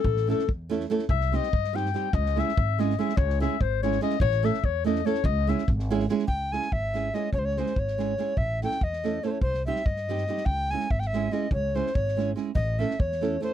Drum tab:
SD |-ooo--oooo|-ooo-oooo-|-ooo--oooo|-oo---oooo|
BD |o---o-----|o---o-----|o---o-----|o---o-----|

SD |-ooo--oooo|--oo-ooooo|--oo--o-o-|--oo-oo-o-|
BD |o---o-----|o---o-----|o---o-----|o---o-----|

SD |--oo-oo-o-|-o-o-ooooo|--oo-oo-o-|--oo-oo-o-|
BD |o---o-----|o---o-----|o---o-----|o---o-----|

SD |--oo-oo-o-|
BD |o---o-----|